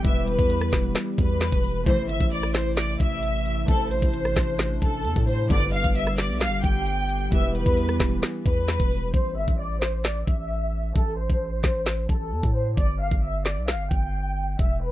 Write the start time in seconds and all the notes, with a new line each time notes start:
Already playing: B3 D4 G4
0.02 E1 E3 G3 B3 E4 G4 E5, kick, closed hi-hat
0.07 B4
0.28 B4, closed hi-hat
0.39 E2, kick
0.50 closed hi-hat
0.61 cross-stick
0.73 E1, kick, snare, clap, closed hi-hat
0.95 snare, clap, closed hi-hat
1.18 E2 B4, kick, closed hi-hat
1.41 snare, clap, closed hi-hat
1.52 E1, kick
1.64 open hi-hat
1.84 A1 A2 C3 E3 A3 C4 E4 A4 C5, kick, closed hi-hat
1.89 C5
2.09 G1 E5, closed hi-hat
2.20 A1, kick
2.32 D5, closed hi-hat
2.43 cross-stick
2.54 C5, snare, clap, closed hi-hat
2.77 D5, snare, clap, closed hi-hat
3.00 A1 E5, kick, closed hi-hat
3.23 closed hi-hat
3.45 closed hi-hat
3.65 A1 A3 C4 D4 E4 A4, kick, closed hi-hat
3.71 C5
3.91 C5, closed hi-hat
4.02 A1, kick
4.14 closed hi-hat
4.25 cross-stick
4.36 A1, kick, snare, clap, closed hi-hat
4.59 snare, clap, closed hi-hat
4.82 A1 A4, kick, closed hi-hat
5.05 E2, closed hi-hat
5.16 A2, kick
5.26 A3 C4 E4 A4 C5, open hi-hat
5.47 G1 G2 B2 D3 G3 B3 D4 G4 D5, kick, closed hi-hat
5.53 B4
5.73 F5, closed hi-hat
5.84 G1, kick
5.95 E5, closed hi-hat
6.07 cross-stick
6.18 D5, snare, clap, closed hi-hat
6.30 B1
6.41 F5, snare, clap, closed hi-hat
6.47 G1
6.64 G1 G5, kick, closed hi-hat
6.87 closed hi-hat
7.09 closed hi-hat
7.29 E1 E3 G3 B3 E4 G4 E5, kick, closed hi-hat
7.35 B4
7.55 B4, closed hi-hat
7.66 E2, kick
7.77 closed hi-hat
7.89 cross-stick
8.00 E1, kick, snare, clap, closed hi-hat
8.23 snare, clap, closed hi-hat
8.46 E2 B4, kick, closed hi-hat
8.68 snare, clap, closed hi-hat
8.80 E1, kick
8.91 open hi-hat
9.14 A1 C5, kick
9.37 G1 E5
9.48 A1, kick
9.59 D5
9.82 C5, snare, clap
10.04 D5, snare, clap
10.27 A1 E5, kick
10.96 A1 A4, kick
11.18 C5
11.30 A1, kick
11.64 A1, kick, snare, clap
11.86 snare, clap
12.09 A1 A4, kick
12.32 E2
12.43 A2, kick
12.54 C5
12.77 G1 D5, kick
13.00 F5
13.11 G1, kick
13.23 E5
13.45 D5, snare, clap
13.57 B1
13.68 F5, snare, clap
13.74 G1
13.91 G1 G5, kick
14.59 E1 E5, kick
14.82 B4